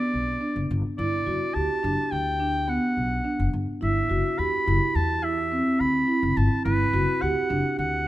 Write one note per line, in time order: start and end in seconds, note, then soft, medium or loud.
0.00 0.30 B3 medium
0.00 0.70 D5 medium
0.14 0.35 B1 medium
0.41 0.87 D4 medium
0.56 0.67 F#1 medium
0.71 0.81 G1 medium
0.98 1.20 G1 medium
0.98 1.21 E4 medium
0.98 1.56 D5 medium
1.26 1.37 F#1 medium
1.26 1.49 F#4 medium
1.54 1.66 D2 medium
1.54 1.77 G4 medium
1.54 2.13 A5 medium
1.83 1.94 F#1 medium
1.83 2.29 D4 medium
2.11 2.77 D2 medium
2.11 2.71 G5 medium
2.40 2.63 D4 medium
2.68 3.14 B3 medium
2.68 3.54 F#5 medium
2.97 3.19 B1 medium
3.25 3.70 D4 medium
3.39 3.50 F#1 medium
3.53 3.64 G1 medium
3.81 4.04 G1 medium
3.81 4.04 E4 medium
3.81 4.40 E5 loud
4.10 4.21 F#1 medium
4.10 4.33 F#4 medium
4.38 4.49 E2 medium
4.38 4.61 G4 medium
4.38 4.97 B5 loud
4.67 4.78 F#1 medium
4.67 5.12 E4 medium
4.95 5.60 E2 medium
4.95 5.25 A5 loud
5.23 5.46 E4 medium
5.23 5.82 E5 medium
5.52 5.97 C4 medium
5.80 6.02 D2 medium
5.80 6.38 B5 loud
6.08 6.54 E4 medium
6.23 6.33 F#1 medium
6.37 6.48 G1 loud
6.37 6.64 A5 medium
6.65 6.87 G1 loud
6.65 6.88 E4 medium
6.65 7.23 B4 loud
6.93 7.04 F#1 medium
6.93 7.16 F#4 medium
7.22 7.33 D2 medium
7.22 7.44 G4 medium
7.22 7.78 F#5 medium
7.50 7.61 F#1 medium
7.50 7.95 D4 medium
7.79 8.08 D2 medium
7.79 8.08 F#5 medium